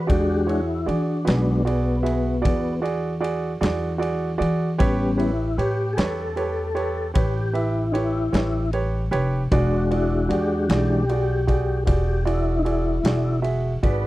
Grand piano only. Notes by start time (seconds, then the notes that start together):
0.07 F#4 G#4 D5
0.47 F#4 G#4 C#5
0.86 F#4 G#4 D5
1.25 F#4 G#4 B4
1.65 F#4 G#4 D5
2.03 F#4 G#4 E5
2.42 F#4 G#4 D5
2.82 F#4 G#4 D5
3.21 F#4 G#4 D5
3.61 F#4 G#4 D5
3.98 F#4 G#4 D5
4.38 F#4 G#4 D5
4.78 G4 B4 C#5
5.17 G4 B4 C#5
5.58 G4 B4 C#5
5.97 G4 B4 C#5
6.36 G4 B4 C#5
6.75 G4 B4 C#5
7.14 G4 B4 C#5
7.53 G4 B4 E5
7.93 G4 B4 C#5
8.32 G4 B4 C#5
8.73 G4 B4 C#5
9.11 G4 B4 C#5
9.52 F#4 G#4 D5
9.91 F#4 G#4 D5
10.29 F#4 G#4 D5
10.69 F#4 G#4 D5
11.10 F#4 G#4 D5
11.47 F#4 G#4 D5
11.86 F#4 G#4 D5
12.25 F#4 G#4 D5
12.65 F#4 G#4 D5
13.05 F#4 G#4 D5
13.42 F#4 G#4 E5
13.83 F#4 G#4 D5